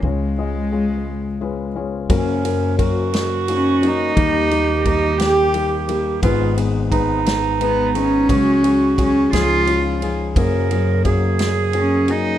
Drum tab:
RD |------|xxxxxx|xxxxxx|xxxxxx|
SD |------|---o--|---o--|---o--|
BD |------|o-o---|o-o---|o-o---|

RD |xxxxxx|xxxxxx|
SD |---o--|---o--|
BD |o-o---|o-o---|